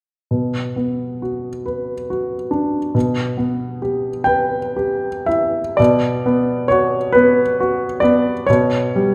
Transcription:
0.31 B2
0.76 B3
1.22 F#4
1.66 B4
2.10 F#4
2.51 D4
2.95 B2
3.38 B3
3.82 G4
4.24 B4 G5
4.76 G4
5.26 E4 E5
5.77 B2 D5
6.26 B3
6.68 F#4 C#5
7.12 B3 B4
7.60 F#4
8.00 B3 D5
8.46 B2 C#5
8.96 G3

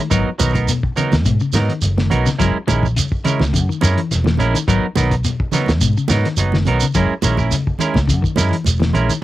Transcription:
0.10 G#1 F#3 B3 D#4 A#4, kick, closed hi-hat, shekere
0.38 B1 D#3 F#3 B3 D#4 A#4, closed hi-hat, high conga, shekere
0.53 B3 D#4 A#4, kick, closed hi-hat, high conga, shekere
0.68 B2, closed hi-hat, shekere
0.83 kick
0.96 C#3 F#3 B3 D#4 A#4, closed hi-hat, low conga, shekere
1.12 D#2, snare, closed hi-hat, high conga, shekere
1.25 G#2 B2, kick, closed hi-hat, shekere
1.40 C#3, shekere
1.53 G#2 F#3 B3 D#4 A#4, snare, closed hi-hat, high conga, shekere
1.69 D#3, closed hi-hat
1.82 F#1, closed hi-hat, shekere
1.98 D#3, snare, high conga
2.10 B1 F#3 B3 D#4 A#4, closed hi-hat, low conga, shekere
2.26 C#3, muted fingered electric bass stroke, snare, shekere
2.39 F#1 F#3 G#3 C#4 E4 A#4, kick, snare, closed hi-hat, shekere
2.55 muted fingered electric bass stroke
2.67 A#1 D#3 G#3 C#4 E4 A#4, closed hi-hat, high conga, shekere
2.83 kick, low conga, shekere
2.96 C#3, closed hi-hat, shekere
3.12 kick
3.24 C#3 G#3 C#4 E4 A#4, closed hi-hat, low conga, shekere
3.40 C#2, snare, high conga, shekere
3.53 F#2 C#3, kick, closed hi-hat, shekere
3.69 D#3, shekere
3.81 F#2 G#3 C#4 E4 A#4, snare, closed hi-hat, high conga, shekere
3.98 E3, closed hi-hat
4.11 E1, snare, closed hi-hat, shekere
4.24 E3, snare, high conga
4.37 A#1 G#3 C#4 E4 A#4, closed hi-hat, low conga, shekere
4.54 D#3, muted fingered electric bass stroke, closed hi-hat, shekere
4.68 G#1 F#3 B3 D#4 A#4, kick, closed hi-hat, shekere
4.83 muted fingered electric bass stroke
4.96 B1 D#3 F#3 B3 D#4 A#4, snare, closed hi-hat, high conga, shekere
5.11 kick, closed hi-hat, shekere
5.24 B2, closed hi-hat, shekere
5.40 kick
5.52 C#3 F#3 B3 D#4 A#4, snare, closed hi-hat, low conga, shekere
5.66 D#2, snare, closed hi-hat, high conga, shekere
5.81 G#2 B2, kick, closed hi-hat, shekere
5.97 C#3, shekere
6.08 G#2 F#3 B3 D#4 A#4, snare, closed hi-hat, high conga, shekere
6.25 D#3, snare, closed hi-hat
6.37 F#1 F#3 B3 D#4, closed hi-hat, shekere
6.52 D#3, snare, high conga
6.65 B1 F#3 B3 D#4 A#4, closed hi-hat, low conga, shekere
6.80 C#3, muted fingered electric bass stroke, shekere
6.94 F#1 F#3 G#3 C#4 E4 A#4, kick, closed hi-hat, shekere
7.10 muted fingered electric bass stroke
7.22 A#1 D#3 G#3 C#4 E4 A#4, closed hi-hat, high conga, shekere
7.37 C#4 E4 A#4, kick, high conga, shekere
7.51 C#3, closed hi-hat, shekere
7.67 kick
7.79 D#3 G#3 C#4 E4 A#4, closed hi-hat, low conga, shekere
7.94 C#2, kick, snare, high conga, shekere
8.08 F#2 C#3, kick, closed hi-hat, shekere
8.22 D#3, kick, shekere
8.36 F#2 G#3 C#4 E4 A#4, snare, closed hi-hat, high conga, shekere
8.51 E3, closed hi-hat
8.64 E1, closed hi-hat, high conga, shekere
8.80 E3, snare, high conga
8.93 A#1 G#3 C#4 E4 A#4, closed hi-hat, low conga, shekere
9.09 D#3, muted fingered electric bass stroke, closed hi-hat, shekere

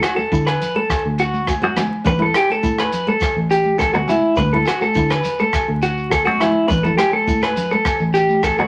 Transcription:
0.02 F#4, cross-stick, closed hi-hat, low agogo, shekere
0.16 A4, high conga, shekere
0.32 D3 E4, kick, shekere
0.47 B4, cross-stick, low agogo, shekere
0.61 closed hi-hat, low conga, shekere
0.75 A3 A4
0.90 kick, cross-stick, low agogo, shekere
1.06 D2
1.18 F#4, closed hi-hat, shekere
1.34 high conga, shekere
1.47 kick, cross-stick, low agogo, shekere
1.62 F#2 B3 F#4, high conga, shekere
1.76 D2 B3, muted clean electric guitar stroke, cross-stick, closed hi-hat, high conga, low conga, low agogo, shekere
2.04 A1 D4 B4, kick, shekere
2.19 E4 A4
2.34 G4, cross-stick, closed hi-hat, low agogo, shekere
2.50 A4, high conga, shekere
2.63 A2 E4, kick, shekere
2.79 B4, cross-stick, low agogo, shekere
2.92 closed hi-hat, low conga, shekere
3.07 A3 A4, shekere
3.21 kick, cross-stick, low agogo, shekere
3.36 A1
3.50 G4, closed hi-hat, shekere
3.65 high conga, shekere
3.79 A4, kick, cross-stick, low agogo, shekere
3.93 D2 B3 F#4, high conga, shekere
4.08 C#2 B3 E4, closed hi-hat, high conga, low conga, low agogo, shekere
4.36 D2 D4 B4, kick, shekere
4.53 E4 A4
4.66 F#4, cross-stick, closed hi-hat, low agogo, shekere
4.81 A4, high conga, shekere
4.95 D3 E4, kick, shekere
5.09 B4, cross-stick, low agogo, shekere
5.24 closed hi-hat, low conga, shekere
5.38 A3 A4, shekere
5.53 kick, cross-stick, low agogo, shekere
5.68 D2
5.82 F#4, closed hi-hat, shekere
5.97 shekere
6.11 A4, kick, cross-stick, low agogo, shekere
6.25 F#2 B3 F#4, high conga, shekere
6.40 D2 B3 E4, cross-stick, closed hi-hat, high conga, low conga, low agogo, shekere
6.68 A1 D4 B4, kick, shekere
6.83 E4 A4, low conga, shekere
6.97 G4, cross-stick, closed hi-hat, high conga, low agogo, shekere
7.13 A4, high conga
7.27 A2 E4, kick, shekere
7.42 B4, cross-stick, low agogo, shekere
7.56 closed hi-hat, low conga, shekere
7.71 A3 A4, shekere
7.85 kick, cross-stick, low agogo, shekere
8.00 A1, shekere
8.14 G4, closed hi-hat, shekere
8.29 high conga, shekere
8.43 A4, kick, cross-stick, low agogo, shekere
8.58 D2 B3 F#4, shekere

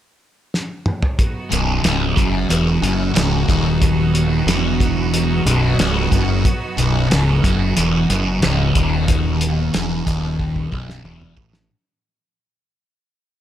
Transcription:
0.54 snare
0.86 mid tom
1.03 floor tom
1.19 F#3 B3 D#4 F#4, kick, closed hi-hat
1.50 B0 B1, closed hi-hat
1.83 C#1 C#2, snare, closed hi-hat
2.17 F#1 F#2, kick, closed hi-hat
2.49 E1 E2, closed hi-hat
2.82 F#1 F#2, closed hi-hat
3.14 C#1 C#2, snare, closed hi-hat
3.48 D#1 D#2, kick, closed hi-hat
3.82 kick, closed hi-hat
4.15 closed hi-hat
4.46 E1 E2, snare, closed hi-hat
4.80 kick, closed hi-hat
5.14 closed hi-hat
5.45 B0 B1, closed hi-hat
5.79 C#1 C#2, snare, closed hi-hat
6.11 F#1 F#2, kick, closed hi-hat
6.45 kick, closed hi-hat
6.77 B0 B1, closed hi-hat
7.10 C#1 C#2, snare, closed hi-hat
7.43 F#1 F#2, kick, closed hi-hat
7.76 E1 E2, snare, closed hi-hat
8.10 F#1 F#2, closed hi-hat
8.42 C#1 C#2, snare, closed hi-hat
8.75 D#1 D#2, kick, closed hi-hat
9.08 kick, closed hi-hat
9.41 closed hi-hat
9.74 E1 E2, snare, closed hi-hat
10.06 D#1 D#2, kick, closed hi-hat
10.40 kick
10.56 kick
10.71 B0 B1, kick
10.90 snare
11.04 E1 E2, mid tom
11.22 mid tom
11.37 A1 A2, kick
11.53 snare

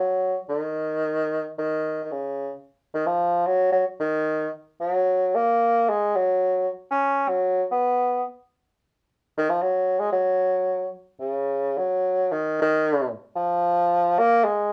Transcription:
Already playing: F#3
0.49 D#3
1.58 D#3
2.03 D#3
2.12 C#3
2.94 D#3
3.07 F3
3.46 F#3
3.72 F#3
4.00 D#3
4.81 F#3
5.35 A#3
5.89 G#3
6.16 F#3
6.91 C#4
7.28 F#3
7.71 B3
9.38 D#3
9.50 F3
9.62 F#3
10.00 G#3
10.12 F#3
11.20 C#3
11.78 F#3
12.32 D#3
12.62 D#3
13.36 F3
14.19 A#3
14.44 G#3

